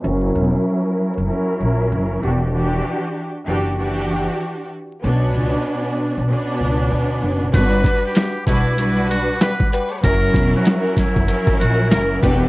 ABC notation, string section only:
X:1
M:4/4
L:1/8
Q:"Swing 16ths" 1/4=96
K:F#phr
V:1 name="String section"
[F,CE^A]4 [F,CEA]3 [E,DFG] | [E,DFG]2 z [E,DFG] [E,DFG]3 z | [B,,B,CD]4 [B,,B,CD]4 | [G,DFB]2 z [G,DFB] [G,DFB]3 z |
[F,CE^A]4 [F,CEA]3 [E,DFG] |]